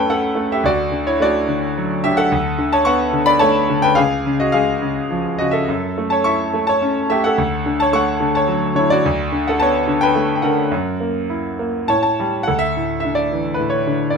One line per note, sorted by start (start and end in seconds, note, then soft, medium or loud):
0.00 0.60 F#2 medium
0.00 0.35 A3 soft
0.00 0.07 C#4 soft
0.00 0.66 E4 soft
0.00 0.10 A4 medium
0.00 0.66 B4 medium
0.00 0.66 C#5 medium
0.00 0.10 F#5 medium
0.00 0.66 G5 medium
0.00 0.67 A5 medium
0.07 0.62 C#4 soft
0.07 0.48 A4 medium
0.07 0.48 F#5 medium
0.35 0.63 A3 soft
0.52 0.65 G4 medium
0.52 0.66 E5 medium
0.64 2.27 D2 medium
0.64 1.04 F#4 medium
0.64 1.08 D5 medium
0.92 1.47 D3 soft
1.07 1.20 E4 medium
1.07 1.21 C#5 medium
1.20 2.28 A3 soft
1.20 2.01 F#4 medium
1.20 2.01 D5 medium
1.48 2.04 D3 medium
1.77 2.30 F#3 medium
2.04 2.31 D3 medium
2.04 2.17 G4 medium
2.04 2.18 E5 medium
2.17 2.68 A4 medium
2.17 2.73 F#5 loud
2.32 3.93 D2 medium
2.58 3.12 D3 medium
2.73 2.85 C#5 medium
2.73 2.86 A5 medium
2.85 3.93 B3 medium
2.85 3.24 F#5 medium
2.85 3.28 C#6 loud
3.13 3.68 D3 medium
3.26 3.40 D5 medium
3.26 3.41 B5 loud
3.39 3.95 A3 medium
3.39 3.79 C#5 medium
3.39 3.83 A5 loud
3.70 3.96 D3 medium
3.82 3.96 B4 medium
3.82 3.97 G5 loud
3.95 5.64 C#2 medium
3.95 4.36 G#4 medium
3.95 4.39 F5 medium
4.26 4.80 C#3 medium
4.40 4.53 F#4 medium
4.40 4.54 D#5 medium
4.52 5.65 G#3 medium
4.52 5.35 G#4 medium
4.52 5.34 F5 medium
4.82 5.38 C#3 medium
5.11 5.66 F3 soft
5.38 5.67 C#3 soft
5.38 5.53 F#4 medium
5.38 5.53 D#5 medium
5.51 6.07 A4 medium
5.51 6.12 E5 medium
5.68 7.34 F#2 medium
5.98 6.52 A3 soft
6.10 6.25 C#5 medium
6.10 6.25 A5 medium
6.24 7.34 E4 soft
6.24 6.65 E5 medium
6.24 6.69 C#6 medium
6.54 7.09 A3 soft
6.67 6.95 C#5 medium
6.67 6.93 A5 medium
6.82 7.36 C#4 medium
7.10 7.37 A3 soft
7.10 7.24 G4 medium
7.10 7.24 E5 medium
7.24 7.77 A4 medium
7.24 7.81 F#5 medium
7.38 9.00 D2 medium
7.66 8.19 D3 medium
7.80 7.94 C#5 medium
7.80 7.94 A5 medium
7.93 9.01 A3 medium
7.93 8.33 F#5 medium
7.93 8.36 C#6 medium
8.20 8.74 D3 medium
8.35 8.61 C#5 medium
8.35 8.61 A5 medium
8.48 9.02 F#3 medium
8.75 9.03 D3 medium
8.75 8.90 E4 medium
8.75 8.89 C#5 medium
8.90 9.43 F#4 medium
8.90 9.42 D5 medium
9.06 10.68 D2 medium
9.32 9.86 D3 medium
9.48 9.61 A4 medium
9.48 9.61 F#5 medium
9.60 10.68 B3 medium
9.60 10.00 C#5 medium
9.60 9.98 A5 medium
9.87 10.42 D3 medium
10.01 10.35 B4 medium
10.01 10.34 G5 medium
10.15 10.70 A3 medium
10.35 10.43 G5 medium
10.42 10.71 D3 medium
10.42 12.14 A#4 medium
10.42 12.13 F#5 medium
10.71 11.84 F#2 medium
11.00 11.58 A#3 soft
11.30 11.86 E4 soft
11.59 11.87 A#3 medium
11.88 12.45 A2 medium
11.88 12.43 C#5 medium
11.88 12.01 A5 medium
12.03 12.48 A5 medium
12.20 12.47 G3 soft
12.43 12.58 F#5 medium
12.47 14.12 D2 medium
12.47 13.28 A4 medium
12.59 12.99 E5 medium
12.77 13.58 A2 soft
13.00 13.16 E5 medium
13.05 13.86 D3 soft
13.15 13.59 D5 medium
13.32 14.17 E3 soft
13.54 13.71 B4 medium
13.59 14.17 A2 soft
13.70 14.15 C#5 medium
13.87 14.17 D3 soft
14.10 14.17 D5 medium